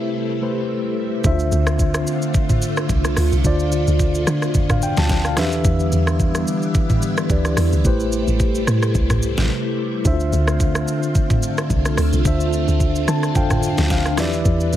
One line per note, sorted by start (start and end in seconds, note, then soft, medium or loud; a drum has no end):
0.00 1.22 C3 medium
0.00 1.20 G3 medium
0.00 0.39 A3 medium
0.00 1.22 A3 medium
0.00 0.39 E4 medium
0.00 1.20 E4 medium
0.00 0.39 G4 medium
0.00 0.40 B4 medium
0.00 0.40 C5 medium
0.42 1.24 A3 medium
0.42 1.24 E4 medium
0.42 1.25 G4 medium
0.42 1.25 B4 medium
0.42 1.25 C5 medium
1.24 1.51 D2 loud
1.24 3.40 D3 medium
1.24 5.33 D3 medium
1.24 5.33 A3 medium
1.24 3.42 C4 medium
1.24 3.41 D4 medium
1.24 1.32 E4 medium
1.24 5.33 F4 medium
1.24 3.41 C5 medium
1.24 3.42 E5 medium
1.24 kick loud
1.24 shaker medium
1.32 3.44 F4 medium
1.39 shaker medium
1.52 2.05 D2 loud
1.52 shaker medium
1.67 cross-stick loud
1.67 shaker medium
1.79 kick loud
1.79 shaker medium
1.94 cross-stick loud
1.94 shaker medium
2.07 shaker loud
2.22 shaker medium
2.34 kick loud
2.34 shaker medium
2.49 kick loud
2.49 mid tom medium
2.49 shaker medium
2.62 shaker loud
2.77 cross-stick medium
2.77 shaker medium
2.89 3.16 C2 medium
2.89 kick loud
2.89 shaker medium
3.05 cross-stick medium
3.05 shaker medium
3.17 3.32 D2 loud
3.17 cross-stick medium
3.17 open hi-hat medium
3.17 shaker medium
3.32 3.44 C2 medium
3.32 shaker medium
3.44 3.85 D2 loud
3.44 5.35 B2 medium
3.44 4.79 D3 medium
3.44 4.79 D4 medium
3.44 4.80 F4 medium
3.44 4.80 C5 medium
3.44 4.80 D5 medium
3.44 kick loud
3.44 shaker loud
3.60 shaker medium
3.72 shaker medium
3.87 4.25 D2 medium
3.87 shaker medium
3.99 kick loud
3.99 shaker medium
4.15 shaker medium
4.27 4.56 D3 loud
4.27 cross-stick loud
4.27 shaker loud
4.42 cross-stick medium
4.42 shaker medium
4.54 4.96 F2 loud
4.54 kick loud
4.54 shaker medium
4.70 4.82 F5 medium
4.70 kick loud
4.70 cross-stick loud
4.70 mid tom loud
4.70 shaker medium
4.82 4.97 G5 medium
4.82 shaker loud
4.97 5.39 D2 medium
4.97 5.24 A5 medium
4.97 snare medium
4.97 shaker medium
5.09 kick loud
5.09 snare medium
5.09 shaker medium
5.25 5.51 F5 medium
5.25 cross-stick medium
5.25 shaker medium
5.37 5.64 E2 loud
5.37 7.82 D3 medium
5.37 7.26 E3 medium
5.37 7.82 G3 medium
5.37 7.82 B3 medium
5.37 7.26 D4 medium
5.37 10.01 E4 medium
5.37 7.26 G4 medium
5.37 7.27 B4 medium
5.37 7.27 E5 medium
5.37 cross-stick loud
5.37 snare medium
5.37 open hi-hat medium
5.37 shaker medium
5.52 shaker medium
5.65 5.91 E2 loud
5.65 kick loud
5.65 shaker loud
5.80 shaker medium
5.92 6.45 E2 medium
5.92 shaker medium
6.07 cross-stick loud
6.07 shaker medium
6.20 kick loud
6.20 shaker medium
6.35 cross-stick medium
6.35 shaker medium
6.47 shaker loud
6.62 shaker medium
6.75 kick loud
6.75 shaker medium
6.90 kick loud
6.90 mid tom medium
6.90 shaker medium
7.02 shaker loud
7.17 cross-stick loud
7.17 shaker medium
7.30 7.56 D2 medium
7.30 7.85 E3 medium
7.30 7.85 D4 medium
7.30 7.85 G4 medium
7.30 7.85 B4 medium
7.30 7.86 D5 medium
7.30 kick loud
7.30 shaker medium
7.45 cross-stick medium
7.45 shaker medium
7.57 7.72 E2 loud
7.57 cross-stick loud
7.57 open hi-hat medium
7.57 shaker medium
7.72 7.84 D2 medium
7.72 shaker medium
7.84 8.26 A1 loud
7.84 10.03 C3 medium
7.84 10.03 G3 medium
7.84 10.01 A3 medium
7.84 10.03 A3 medium
7.84 10.01 E4 medium
7.84 10.01 G4 medium
7.84 10.02 B4 medium
7.84 10.02 C5 medium
7.84 kick loud
7.84 shaker loud
8.00 shaker medium
8.12 shaker medium
8.28 8.66 A1 loud
8.28 shaker medium
8.40 kick loud
8.40 shaker medium
8.55 shaker medium
8.67 8.94 A2 loud
8.67 cross-stick loud
8.67 shaker loud
8.83 cross-stick medium
8.83 shaker medium
8.95 9.36 C2 loud
8.95 kick loud
8.95 shaker medium
9.10 kick loud
9.10 cross-stick medium
9.10 mid tom loud
9.10 shaker medium
9.23 shaker loud
9.37 9.50 A1 loud
9.37 snare medium
9.37 shaker medium
10.05 10.31 D2 loud
10.05 12.21 D3 medium
10.05 14.77 D3 medium
10.05 14.14 A3 medium
10.05 14.14 C4 medium
10.05 12.21 D4 medium
10.05 10.13 E4 medium
10.05 14.14 F4 loud
10.05 12.22 C5 medium
10.05 12.22 E5 medium
10.05 kick loud
10.05 shaker loud
10.12 12.25 F4 medium
10.20 shaker medium
10.33 10.85 D2 loud
10.33 shaker medium
10.48 cross-stick loud
10.48 shaker medium
10.60 kick loud
10.60 shaker medium
10.75 cross-stick loud
10.75 shaker medium
10.88 shaker loud
11.03 shaker medium
11.15 kick loud
11.15 shaker medium
11.30 kick loud
11.30 mid tom medium
11.30 shaker medium
11.43 shaker loud
11.58 cross-stick loud
11.58 shaker medium
11.70 11.97 C2 medium
11.70 kick loud
11.70 shaker medium
11.85 cross-stick medium
11.85 shaker medium
11.97 12.12 D2 medium
11.97 cross-stick loud
11.97 open hi-hat medium
11.97 shaker medium
12.13 12.25 C2 medium
12.13 shaker medium
12.25 12.66 D2 loud
12.25 13.33 D3 medium
12.25 13.33 D4 medium
12.25 13.34 F4 medium
12.25 13.34 C5 medium
12.25 13.34 E5 medium
12.25 kick loud
12.25 shaker loud
12.40 shaker medium
12.53 shaker medium
12.68 13.06 D2 loud
12.68 shaker medium
12.80 kick loud
12.80 shaker medium
12.96 shaker medium
13.08 13.37 D3 loud
13.08 13.34 A5 medium
13.08 cross-stick loud
13.08 shaker loud
13.23 cross-stick medium
13.23 shaker medium
13.35 13.76 F2 loud
13.35 14.18 D3 medium
13.35 14.18 D4 medium
13.35 14.18 F4 medium
13.35 14.19 C5 medium
13.35 13.90 F5 medium
13.35 13.87 G5 medium
13.35 kick loud
13.35 shaker medium
13.50 kick loud
13.50 cross-stick loud
13.50 mid tom medium
13.50 shaker medium
13.63 shaker loud
13.78 14.19 D2 medium
13.78 snare medium
13.78 shaker medium
13.90 14.16 F5 medium
13.90 kick loud
13.90 snare medium
13.90 shaker medium
14.06 cross-stick medium
14.06 shaker medium
14.17 14.44 E2 loud
14.17 14.77 E3 medium
14.17 14.77 G3 medium
14.17 14.77 B3 medium
14.17 14.77 E4 loud
14.17 14.77 E4 medium
14.17 14.77 G4 medium
14.17 14.77 B4 medium
14.17 14.77 D5 medium
14.17 14.44 E5 medium
14.17 cross-stick loud
14.17 snare medium
14.17 open hi-hat medium
14.17 shaker medium
14.33 shaker medium
14.45 14.72 E2 loud
14.45 kick loud
14.45 shaker medium
14.60 shaker medium
14.73 14.77 E2 loud
14.73 shaker medium